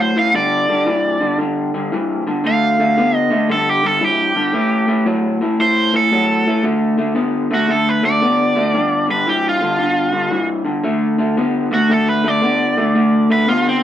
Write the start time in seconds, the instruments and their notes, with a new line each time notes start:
Already playing: clean electric guitar A2 F#3
0.00 overdriven electric guitar C5
0.16 clean electric guitar A2 E3, overdriven electric guitar F5
0.34 clean electric guitar G2 D3, overdriven electric guitar D5
0.69 clean electric guitar G2 D3
0.86 clean electric guitar G2 E3
1.21 clean electric guitar G2 D3
1.39 clean electric guitar G2 D3
1.74 clean electric guitar G2 D3
1.92 clean electric guitar G2 E3
2.27 clean electric guitar G2 D3
2.44 clean electric guitar D3 A3, overdriven electric guitar F5
2.80 clean electric guitar D3 A3
2.98 clean electric guitar D3 B3
3.16 overdriven electric guitar D#5
3.31 clean electric guitar D3 A3
3.49 clean electric guitar G2 D3, overdriven electric guitar A4
3.70 overdriven electric guitar G4
3.83 clean electric guitar G2 D3, overdriven electric guitar A4
4.01 clean electric guitar G2 E3, overdriven electric guitar G4
4.35 clean electric guitar G2 D3
4.53 clean electric guitar A2 E3
4.88 clean electric guitar A2 E3
5.06 clean electric guitar A2 F#3
5.41 clean electric guitar A2 E3
5.60 clean electric guitar A2 E3, overdriven electric guitar C5
5.94 clean electric guitar A2 E3, overdriven electric guitar A4
6.12 clean electric guitar A2 F#3
6.47 clean electric guitar A2 E3
6.64 clean electric guitar D3 A3
6.98 clean electric guitar D3 A3
7.15 clean electric guitar D3 B3
7.51 clean electric guitar D3 A3, overdriven electric guitar F#4
7.68 clean electric guitar D3 A3, overdriven electric guitar A4
7.89 overdriven electric guitar B4
8.03 clean electric guitar D3 A3, overdriven electric guitar D5
8.22 clean electric guitar D3 B3
8.56 clean electric guitar D3 A3
8.74 clean electric guitar G2 D3
9.08 clean electric guitar G2 D3, overdriven electric guitar B4
9.27 clean electric guitar G2 E3, overdriven electric guitar G4
9.49 overdriven electric guitar F4
9.61 clean electric guitar G2 D3
9.78 clean electric guitar G2 D3
10.12 clean electric guitar G2 D3
10.30 clean electric guitar G2 E3
10.65 clean electric guitar G2 D3
10.84 clean electric guitar D3 A3
11.18 clean electric guitar D3 A3
11.37 clean electric guitar D3 B3
11.71 clean electric guitar D3 A3, overdriven electric guitar F#4
11.89 clean electric guitar D3 A3, overdriven electric guitar A4
12.09 overdriven electric guitar B4
12.24 clean electric guitar D3 A3
12.28 overdriven electric guitar D5
12.42 clean electric guitar D3 B3
12.77 clean electric guitar D3 A3
12.95 clean electric guitar D3 A3
13.30 clean electric guitar D3 A3, overdriven electric guitar B4
13.48 clean electric guitar D3 B3, overdriven electric guitar F4
13.69 overdriven electric guitar C4